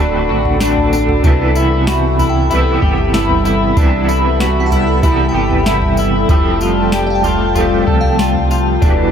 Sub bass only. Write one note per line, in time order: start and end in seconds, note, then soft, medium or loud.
0.00 0.31 D1 loud
0.30 1.20 A1 medium
1.24 2.78 C2 loud
2.83 3.73 G1 medium
3.77 5.31 C2 loud
5.34 6.25 G1 loud
6.29 7.83 F1 medium
7.87 8.78 C2 medium
8.82 9.12 E1 loud